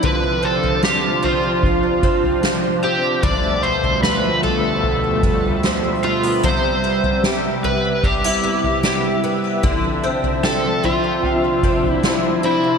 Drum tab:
SD |----o-------o---|----o-------o---|----o-------o---|----o-------o---|
FT |o--o--o-o--o----|o--o--o-o--o----|o--o--o-o--o----|o--o--o-o--o----|
BD |--------o-o-----|o---------o-----|--------o-------|o---------o-----|